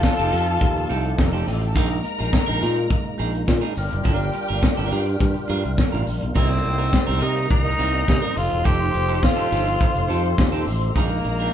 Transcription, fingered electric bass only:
0.19 0.30 F1 medium
0.33 0.57 F2 loud
0.61 0.85 D#2 medium
0.91 1.14 C2 medium
1.19 1.42 F1 medium
1.48 1.76 A1 medium
1.76 2.00 A#1 loud
2.20 2.31 A#1 medium
2.49 2.60 A#1 medium
2.63 2.86 A#2 loud
3.20 3.43 A#1 medium
3.48 3.61 A#2 medium
3.77 3.90 G1 medium
3.93 4.04 F#1 loud
4.05 4.29 G1 loud
4.50 4.61 G1 loud
4.79 4.90 G1 medium
4.92 5.16 G2 loud
5.21 5.33 G2 loud
5.50 5.62 G2 medium
5.65 5.76 C2 medium
5.94 6.05 A1 loud
6.07 6.20 A#1 medium
6.23 6.34 B1 medium
6.36 6.59 C2 loud
6.65 6.89 C2 loud
7.09 7.20 C2 loud
7.22 7.46 C3 loud
7.51 7.74 C2 loud
7.80 8.03 C2 medium
8.09 8.21 C3 medium
8.37 8.49 F1 loud
8.53 8.64 E1 medium
8.66 8.89 F1 loud
8.95 9.18 F1 loud
9.52 9.76 G1 loud
9.96 10.07 F1 loud
10.10 10.33 F2 medium
10.39 10.62 D#2 loud
10.67 10.91 A1 medium
10.96 11.20 A#1 loud
11.25 11.48 A#1 medium

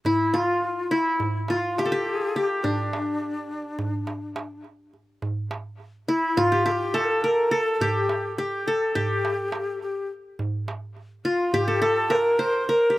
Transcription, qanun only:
0.06 0.40 E4 medium
0.34 0.97 F4 medium
0.91 1.56 E4 medium
1.50 2.85 F4 medium
1.79 1.91 G4 medium
1.85 3.03 A4 medium
1.92 2.36 G4 medium
2.36 3.62 G4 medium
2.64 4.61 D4 medium
6.08 6.43 E4 medium
6.37 7.72 F4 loud
6.52 6.65 G4 medium
6.66 7.81 G4 medium
6.94 7.30 A4 medium
7.24 7.57 A#4 medium
7.51 8.67 A4 medium
7.81 8.38 G4 loud
8.38 8.95 G4 medium
8.68 9.85 A4 medium
8.95 10.21 G4 medium
11.25 12.60 F4 medium
11.54 12.79 G4 loud
11.68 11.81 A4 medium
11.82 12.16 A4 loud
12.10 12.68 A#4 medium
12.39 12.98 C5 medium
12.69 12.98 A#4 medium
12.90 12.98 G4 medium

